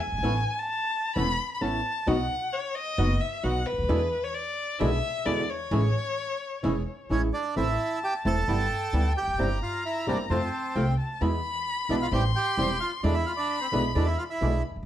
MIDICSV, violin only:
0, 0, Header, 1, 2, 480
1, 0, Start_track
1, 0, Key_signature, 3, "major"
1, 0, Tempo, 457666
1, 252, Time_signature, 4, 2, 24, 8
1, 7932, Key_signature, 0, "minor"
1, 15580, End_track
2, 0, Start_track
2, 0, Title_t, "Violin"
2, 0, Program_c, 0, 40
2, 0, Note_on_c, 0, 80, 84
2, 613, Note_on_c, 0, 81, 97
2, 629, Note_off_c, 0, 80, 0
2, 1208, Note_off_c, 0, 81, 0
2, 1214, Note_on_c, 0, 83, 100
2, 1592, Note_off_c, 0, 83, 0
2, 1621, Note_on_c, 0, 83, 62
2, 1694, Note_on_c, 0, 81, 88
2, 1710, Note_off_c, 0, 83, 0
2, 2177, Note_on_c, 0, 78, 91
2, 2193, Note_off_c, 0, 81, 0
2, 2653, Note_on_c, 0, 73, 84
2, 2669, Note_off_c, 0, 78, 0
2, 2889, Note_on_c, 0, 75, 100
2, 2904, Note_off_c, 0, 73, 0
2, 3364, Note_on_c, 0, 76, 84
2, 3379, Note_off_c, 0, 75, 0
2, 3605, Note_on_c, 0, 78, 86
2, 3621, Note_off_c, 0, 76, 0
2, 3840, Note_on_c, 0, 71, 86
2, 3856, Note_off_c, 0, 78, 0
2, 4444, Note_on_c, 0, 73, 83
2, 4459, Note_off_c, 0, 71, 0
2, 4556, Note_on_c, 0, 74, 83
2, 4571, Note_off_c, 0, 73, 0
2, 5025, Note_on_c, 0, 76, 98
2, 5040, Note_off_c, 0, 74, 0
2, 5514, Note_on_c, 0, 74, 85
2, 5530, Note_off_c, 0, 76, 0
2, 5761, Note_on_c, 0, 73, 82
2, 5777, Note_off_c, 0, 74, 0
2, 7448, Note_off_c, 0, 73, 0
2, 7932, Note_on_c, 0, 81, 73
2, 8896, Note_on_c, 0, 79, 71
2, 8912, Note_off_c, 0, 81, 0
2, 9852, Note_on_c, 0, 82, 81
2, 9868, Note_off_c, 0, 79, 0
2, 10814, Note_on_c, 0, 81, 73
2, 10830, Note_off_c, 0, 82, 0
2, 11282, Note_on_c, 0, 79, 68
2, 11298, Note_off_c, 0, 81, 0
2, 11520, Note_off_c, 0, 79, 0
2, 11531, Note_on_c, 0, 81, 68
2, 11767, Note_on_c, 0, 83, 88
2, 11783, Note_off_c, 0, 81, 0
2, 12719, Note_on_c, 0, 84, 94
2, 12735, Note_off_c, 0, 83, 0
2, 13676, Note_on_c, 0, 83, 87
2, 13692, Note_off_c, 0, 84, 0
2, 15367, Note_off_c, 0, 83, 0
2, 15580, End_track
0, 0, End_of_file